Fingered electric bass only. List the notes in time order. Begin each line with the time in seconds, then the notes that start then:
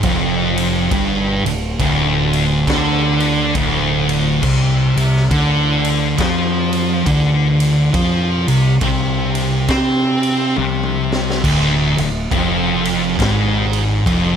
0.03 F1
0.92 G1
1.44 D1
1.80 D1
2.67 D2
3.55 D1
4.43 C2
4.96 C2
5.31 D2
6.18 F2
7.06 D2
7.94 F2
8.48 C2
8.81 C2
9.69 C3
10.58 C2
11.44 D1
11.98 D1
12.31 F1
13.19 G#1
14.06 F1